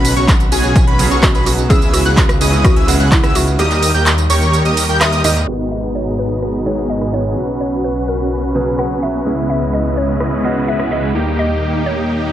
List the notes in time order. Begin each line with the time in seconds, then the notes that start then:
Already playing: B1 C#3 F#3 B3 C#4 F#4 B4 B5
0.05 open hi-hat, ride, tambourine
0.16 B1 C#4 F#4 C#5 C#6, closed hi-hat, tambourine
0.28 kick, clap, closed hi-hat, tambourine
0.40 closed hi-hat, tambourine
0.52 B1 C#4 F#4 G#4 G#5, open hi-hat, ride, tambourine
0.64 closed hi-hat, tambourine
0.76 kick, closed hi-hat, tambourine
0.87 B1 C#4 F#4 B4 B5, closed hi-hat
0.99 C#3 F#3 B3 G#4, open hi-hat, ride, tambourine
1.11 B1 C#4 F#4 C#5 C#6, closed hi-hat, tambourine
1.23 F#4, kick, cross-stick, clap, closed hi-hat, tambourine
1.35 B1 C#4 F#4 B4 B5, closed hi-hat, tambourine
1.46 C#3 F#3 B3 F#4, open hi-hat, ride, tambourine
1.58 closed hi-hat, tambourine
1.69 C#2 C#3 G#3 B3 C#4 E4 G#4 B4 E5 E6, kick, closed hi-hat, tambourine
1.82 closed hi-hat, tambourine
1.94 F#4, open hi-hat, ride, tambourine
2.05 C#2 C#4 E4 G#4 B4 F#5 F#6, closed hi-hat, tambourine
2.17 kick, clap, closed hi-hat, tambourine
2.29 cross-stick, closed hi-hat, tambourine
2.41 C#2 C#4 E4 G#4 B4 D#5 D#6, open hi-hat, ride, tambourine
2.53 tambourine
2.64 F#4, kick, cross-stick, closed hi-hat, tambourine
2.76 C#2 C#4 E4 G#4 B4 E5 E6, closed hi-hat
2.88 C#3 G#3 B3 F#4, open hi-hat, ride, tambourine
3.00 C#2 C#4 E4 G#4 B4 F#5 F#6, closed hi-hat, tambourine
3.12 E4, kick, clap, closed hi-hat, tambourine
3.23 C#2 C#4 E4 G#4 B4 E5 E6, cross-stick, closed hi-hat, tambourine
3.35 C#3 G#3 B3 E4 F#4, open hi-hat, ride, tambourine
3.47 closed hi-hat, tambourine
3.58 D#2 D#3 G3 A#3 G4 A#4 D#5 D#6, closed hi-hat, tambourine
3.71 clap, closed hi-hat, tambourine
3.83 open hi-hat, ride, tambourine
3.94 D#2 G4 A#4 G5 G6, closed hi-hat, tambourine
4.06 clap, closed hi-hat, tambourine
4.18 closed hi-hat, tambourine
4.30 D#2 G4 A#4 C#5 C#6, open hi-hat, ride, tambourine
4.42 closed hi-hat, tambourine
4.54 closed hi-hat, tambourine
4.65 D#2 G4 A#4 D#5 D#6, closed hi-hat, tambourine
4.77 open hi-hat, ride, tambourine
4.89 D#2 G4 A#4 G5 G6, closed hi-hat, tambourine
5.01 D#2 G4 A#4 D#5 E5 D#6, cross-stick, clap, closed hi-hat, tambourine
5.13 closed hi-hat, tambourine
5.24 D#2 G#2 D#3 G3 A#3 G4 A#4 D#5 D#6, open hi-hat, ride, tambourine
5.36 closed hi-hat, tambourine
5.47 G#1 G#2 D#3 G#3 B3 D#4 F#4 G#4 B4 D#5 A#5, crash, downlifter
5.71 D#5
5.95 C#5
6.19 B4
6.42 cross-stick
6.66 G#2 D#3 G#3 B3 G#4 C#5
6.90 D#5
7.01 cross-stick
7.13 D#3 G#3 B3 F#4 C#5
7.36 B1 C#3 F#3 B3 C#4 F#4 B4
7.61 C#5
7.84 B4
8.08 A#4
8.55 C#3 F#3 B3 G#4 B4
8.79 F#5, cross-stick
9.02 C#3 F#3 B3 F#4 E5
9.25 C#2 C#3 G#3 B3 C#4 E4 B4 D#5
9.50 E5
9.73 D#5
9.97 C#5
10.20 cross-stick
10.44 C#3 G#3 B3 F#4 D#5
10.68 E5
10.79 cross-stick
10.91 C#3 G#3 B3 E4 D#5
11.14 D#2 D#3 G3 A#3 D#4 G4
11.39 D#5
11.86 C#5
12.09 reverse cymbal